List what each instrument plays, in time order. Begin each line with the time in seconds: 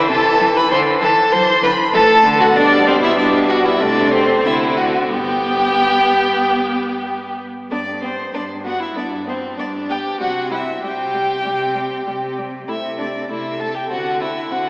Already playing: viola E3
0.09 cello C3, violin A4 A5
0.40 cello E3
0.57 violin B4 B5
0.71 cello D3, violin C5 C6
1.02 cello E3, violin A4 A5
1.32 cello F#3, violin C5 C6
1.63 cello D3, violin B4 B5
1.94 cello E3, viola A3, violin A4 A5
2.24 cello D3
2.40 violin F#4 F#5
2.55 cello B2, viola G3, violin D4 D5
2.86 violin C4 C5
3.02 violin E4 E5
3.17 viola G3, violin D4 D5
3.49 violin F#4 F#5
3.65 violin E4 E5
3.79 cello C3, viola A3, violin D4 D5
4.12 violin C4 C5
4.44 cello D3, viola C4, violin E4 E5
4.77 violin F#4 F#5
5.09 cello G2, viola B3, violin G4 G5
7.71 cello G2, viola B3, violin D4 D5
8.02 viola B3, violin C4 C5
8.34 cello G2, viola B3, violin D4 D5
8.64 viola B3, violin F#4 F#5
8.80 violin E4 E5
8.96 cello G2, viola B3, violin D4 D5
9.27 viola B3, violin C4 C5
9.57 cello G2, viola B3, violin D4 D5
9.90 viola B3, violin G4 G5
10.20 cello C3, viola G3, violin F#4 F#5
10.51 viola G3, violin E4 E5
10.82 cello C3, viola G3, violin G4 G5
11.14 viola G3
11.45 cello C3, viola G3
11.75 viola G3
12.07 cello C3, viola G3
12.38 viola G3
12.68 cello C3, viola A3, violin E4 E5
12.98 viola A3, violin D4 D5
13.29 cello C3, viola A3, violin E4 E5
13.60 viola A3, violin A4 A5
13.75 violin G4 G5
13.90 cello D3, viola C4, violin F#4 F#5
14.20 viola C4, violin E4 E5
14.51 cello D3, viola C4, violin F#4 F#5